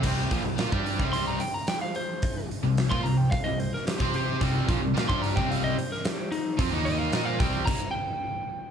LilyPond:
<<
  \new Staff \with { instrumentName = "Lead electric guitar" } { \time 4/4 \key c \minor \tempo 4 = 110 << { r1 | r1 | r1 | r2 r8 g''4. | } \\ { r2 c'''16 bes''16 g''16 bes''16 g''16 f''16 c''8~ | c''8 r8. c'''16 bes''16 g''16 f''16 ees''16 c''16 bes'16 g'8 g'8 | r4 r16 c'''16 bes''16 g''16 f''16 ees''16 c''16 bes'16 g'8 ees'8 | r8 ees''16 f''16 ees''16 f''16 g''8 bes''8 g''8 r4 | } >> }
  \new Staff \with { instrumentName = "Distorted electric guitar" } { \clef bass \time 4/4 \key c \minor <c g c'>8 <bes, f>16 <c g>16 <bes f'>16 <g d' g'>8 <c g c'>8. r4. | r8. <c g>8 <bes f'>16 <c g>8 r16 <c g>8 r8 <c' g' c''>8. | <c g c'>8 <bes, f>16 <c g>16 <bes f'>16 <g d' g'>8 <c g c'>8. r4. | <f c'>16 <ees bes ees'>8. <bes f' bes'>8 <c g c'>8 r2 | }
  \new Staff \with { instrumentName = "Overdriven electric guitar" } { \clef bass \time 4/4 \key c \minor <c g c'>8 <bes, f>16 <c g>16 <bes f'>16 <g d' g'>8 <c g c'>8. r4. | r8. <c g>8 <bes f'>16 <c g>8 r16 <c g>8 r8 <c' g' c''>8. | <c g c'>8 <bes, f>16 <c g>16 <bes f'>16 <g d' g'>8 <c g c'>8. r4. | <f c'>16 <ees bes ees'>8. <bes f' bes'>8 <c g c'>8 r2 | }
  \new Staff \with { instrumentName = "Overdriven electric guitar" } { \clef bass \time 4/4 \key c \minor <c g c'>8 <bes, f>16 <c g>16 <bes f'>16 <g d' g'>8 <c g c'>8. r4. | r8. <c g>8 <bes f'>16 <c g>8 r16 <c g>8 r8 <c' g' c''>8. | <c g c'>8 <bes, f>16 <c g>16 <bes f'>16 <g d' g'>8 <c g c'>8. r4. | <f c'>16 <ees bes ees'>8. <bes f' bes'>8 <c g c'>8 r2 | }
  \new Staff \with { instrumentName = "Fingered electric bass" } { \clef bass \time 4/4 \key c \minor c,8 bes,,16 c,16 bes,16 g,8 c,8. r4. | r8. c,8 bes,16 c,8 r16 c,8 r8 c8. | c,8 bes,,16 c,16 bes,16 g,8 c,8. r4. | f,16 ees,8. bes,8 c,8 r2 | }
  \new DrumStaff \with { instrumentName = "Drums" } \drummode { \time 4/4 <cymc hho bd>8 <hho bd>8 <hho sn>16 bd16 hho16 <bd sn>16 hho8 hho8 <hho sn>8 hho8 | <hho bd>8 hho8 <hho sn>16 bd16 hho8 <hho bd>8 hho16 sn16 <hho sn>16 bd16 hho8 | <hho bd>8 <hho bd>8 <hho sn>16 bd16 hho16 <bd sn>16 hho8 hho16 sn16 <hho sn>8 hho8 | <hho bd>8 hho8 <hho sn>8 <hho bd>8 <cymc bd>4 r4 | }
>>